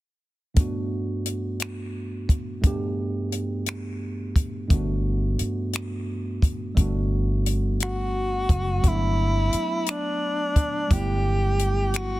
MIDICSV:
0, 0, Header, 1, 6, 480
1, 0, Start_track
1, 0, Key_signature, 1, "major"
1, 0, Tempo, 689655
1, 392, Time_signature, 6, 3, 24, 8
1, 8490, End_track
2, 0, Start_track
2, 0, Title_t, "Tenor saxophone"
2, 0, Program_c, 0, 66
2, 5453, Note_on_c, 0, 66, 77
2, 6178, Note_on_c, 0, 64, 88
2, 6188, Note_off_c, 0, 66, 0
2, 6892, Note_on_c, 0, 62, 81
2, 6902, Note_off_c, 0, 64, 0
2, 7607, Note_on_c, 0, 67, 86
2, 7618, Note_off_c, 0, 62, 0
2, 8331, Note_on_c, 0, 66, 86
2, 8342, Note_off_c, 0, 67, 0
2, 8490, Note_off_c, 0, 66, 0
2, 8490, End_track
3, 0, Start_track
3, 0, Title_t, "Tine electric piano"
3, 0, Program_c, 1, 4
3, 378, Note_on_c, 1, 43, 56
3, 390, Note_on_c, 1, 57, 50
3, 399, Note_on_c, 1, 59, 50
3, 410, Note_on_c, 1, 62, 54
3, 420, Note_on_c, 1, 66, 63
3, 514, Control_c, 1, 64, 127
3, 1797, Note_off_c, 1, 43, 0
3, 1803, Note_off_c, 1, 57, 0
3, 1808, Note_off_c, 1, 59, 0
3, 1813, Note_off_c, 1, 62, 0
3, 1816, Note_on_c, 1, 43, 59
3, 1818, Note_off_c, 1, 66, 0
3, 1823, Note_on_c, 1, 57, 54
3, 1838, Note_on_c, 1, 59, 54
3, 1846, Note_on_c, 1, 62, 53
3, 1858, Note_on_c, 1, 67, 64
3, 3236, Note_off_c, 1, 43, 0
3, 3240, Note_off_c, 1, 57, 0
3, 3247, Note_off_c, 1, 59, 0
3, 3251, Note_off_c, 1, 62, 0
3, 3256, Note_on_c, 1, 43, 63
3, 3257, Note_off_c, 1, 67, 0
3, 3265, Note_on_c, 1, 57, 54
3, 3275, Note_on_c, 1, 59, 55
3, 3287, Note_on_c, 1, 62, 54
3, 3298, Note_on_c, 1, 66, 65
3, 4676, Note_off_c, 1, 43, 0
3, 4681, Note_off_c, 1, 57, 0
3, 4686, Note_off_c, 1, 59, 0
3, 4692, Note_off_c, 1, 62, 0
3, 4696, Note_on_c, 1, 55, 57
3, 4697, Note_off_c, 1, 66, 0
3, 4705, Note_on_c, 1, 57, 58
3, 4718, Note_on_c, 1, 59, 55
3, 4729, Note_on_c, 1, 62, 58
3, 4738, Note_on_c, 1, 66, 70
3, 6116, Note_off_c, 1, 55, 0
3, 6121, Note_off_c, 1, 57, 0
3, 6127, Note_off_c, 1, 59, 0
3, 6133, Note_off_c, 1, 62, 0
3, 6134, Note_on_c, 1, 54, 58
3, 6137, Note_off_c, 1, 66, 0
3, 6152, Note_on_c, 1, 57, 49
3, 6160, Control_c, 1, 64, 0
3, 6165, Note_on_c, 1, 59, 50
3, 6179, Note_on_c, 1, 62, 59
3, 6297, Control_c, 1, 64, 127
3, 7555, Note_off_c, 1, 54, 0
3, 7564, Note_off_c, 1, 57, 0
3, 7571, Note_off_c, 1, 59, 0
3, 7573, Note_on_c, 1, 55, 52
3, 7578, Note_off_c, 1, 62, 0
3, 7585, Note_on_c, 1, 57, 50
3, 7602, Note_on_c, 1, 59, 54
3, 7616, Note_on_c, 1, 64, 60
3, 8490, Note_off_c, 1, 55, 0
3, 8490, Note_off_c, 1, 57, 0
3, 8490, Note_off_c, 1, 59, 0
3, 8490, Note_off_c, 1, 64, 0
3, 8490, End_track
4, 0, Start_track
4, 0, Title_t, "Fingered electric bass"
4, 0, Program_c, 2, 33
4, 3278, Note_on_c, 2, 31, 90
4, 3727, Note_off_c, 2, 31, 0
4, 4717, Note_on_c, 2, 31, 93
4, 5886, Note_off_c, 2, 31, 0
4, 5913, Note_on_c, 2, 30, 80
4, 6128, Note_off_c, 2, 30, 0
4, 6155, Note_on_c, 2, 31, 85
4, 6606, Note_off_c, 2, 31, 0
4, 7593, Note_on_c, 2, 31, 93
4, 8490, Note_off_c, 2, 31, 0
4, 8490, End_track
5, 0, Start_track
5, 0, Title_t, "Muted fingered electric bass strokes"
5, 3765, Note_on_c, 9, 29, 38
5, 3834, Note_off_c, 9, 29, 0
5, 6639, Note_on_c, 9, 29, 40
5, 6709, Note_off_c, 9, 29, 0
5, 8490, End_track
6, 0, Start_track
6, 0, Title_t, "Drums"
6, 392, Note_on_c, 9, 42, 58
6, 394, Note_on_c, 9, 36, 82
6, 462, Note_off_c, 9, 42, 0
6, 464, Note_off_c, 9, 36, 0
6, 874, Note_on_c, 9, 42, 53
6, 944, Note_off_c, 9, 42, 0
6, 1112, Note_on_c, 9, 42, 56
6, 1130, Note_on_c, 9, 26, 85
6, 1181, Note_off_c, 9, 42, 0
6, 1199, Note_off_c, 9, 26, 0
6, 1594, Note_on_c, 9, 36, 68
6, 1598, Note_on_c, 9, 42, 55
6, 1664, Note_off_c, 9, 36, 0
6, 1667, Note_off_c, 9, 42, 0
6, 1833, Note_on_c, 9, 42, 57
6, 1835, Note_on_c, 9, 36, 86
6, 1903, Note_off_c, 9, 42, 0
6, 1904, Note_off_c, 9, 36, 0
6, 2312, Note_on_c, 9, 42, 48
6, 2381, Note_off_c, 9, 42, 0
6, 2549, Note_on_c, 9, 42, 57
6, 2567, Note_on_c, 9, 26, 78
6, 2618, Note_off_c, 9, 42, 0
6, 2636, Note_off_c, 9, 26, 0
6, 3032, Note_on_c, 9, 36, 67
6, 3034, Note_on_c, 9, 42, 52
6, 3101, Note_off_c, 9, 36, 0
6, 3104, Note_off_c, 9, 42, 0
6, 3273, Note_on_c, 9, 36, 86
6, 3273, Note_on_c, 9, 42, 56
6, 3342, Note_off_c, 9, 42, 0
6, 3343, Note_off_c, 9, 36, 0
6, 3751, Note_on_c, 9, 42, 52
6, 3821, Note_off_c, 9, 42, 0
6, 3990, Note_on_c, 9, 42, 54
6, 4008, Note_on_c, 9, 26, 87
6, 4060, Note_off_c, 9, 42, 0
6, 4078, Note_off_c, 9, 26, 0
6, 4471, Note_on_c, 9, 36, 73
6, 4476, Note_on_c, 9, 42, 53
6, 4541, Note_off_c, 9, 36, 0
6, 4546, Note_off_c, 9, 42, 0
6, 4712, Note_on_c, 9, 36, 89
6, 4713, Note_on_c, 9, 42, 61
6, 4782, Note_off_c, 9, 36, 0
6, 4782, Note_off_c, 9, 42, 0
6, 5193, Note_on_c, 9, 42, 54
6, 5262, Note_off_c, 9, 42, 0
6, 5430, Note_on_c, 9, 42, 58
6, 5448, Note_on_c, 9, 26, 81
6, 5500, Note_off_c, 9, 42, 0
6, 5518, Note_off_c, 9, 26, 0
6, 5910, Note_on_c, 9, 36, 76
6, 5912, Note_on_c, 9, 42, 59
6, 5980, Note_off_c, 9, 36, 0
6, 5982, Note_off_c, 9, 42, 0
6, 6151, Note_on_c, 9, 36, 91
6, 6151, Note_on_c, 9, 42, 67
6, 6220, Note_off_c, 9, 36, 0
6, 6220, Note_off_c, 9, 42, 0
6, 6630, Note_on_c, 9, 42, 56
6, 6700, Note_off_c, 9, 42, 0
6, 6865, Note_on_c, 9, 42, 64
6, 6883, Note_on_c, 9, 26, 86
6, 6935, Note_off_c, 9, 42, 0
6, 6953, Note_off_c, 9, 26, 0
6, 7349, Note_on_c, 9, 36, 72
6, 7349, Note_on_c, 9, 42, 59
6, 7419, Note_off_c, 9, 36, 0
6, 7419, Note_off_c, 9, 42, 0
6, 7590, Note_on_c, 9, 42, 64
6, 7591, Note_on_c, 9, 36, 89
6, 7660, Note_off_c, 9, 36, 0
6, 7660, Note_off_c, 9, 42, 0
6, 8069, Note_on_c, 9, 42, 58
6, 8138, Note_off_c, 9, 42, 0
6, 8308, Note_on_c, 9, 42, 63
6, 8326, Note_on_c, 9, 26, 83
6, 8378, Note_off_c, 9, 42, 0
6, 8396, Note_off_c, 9, 26, 0
6, 8490, End_track
0, 0, End_of_file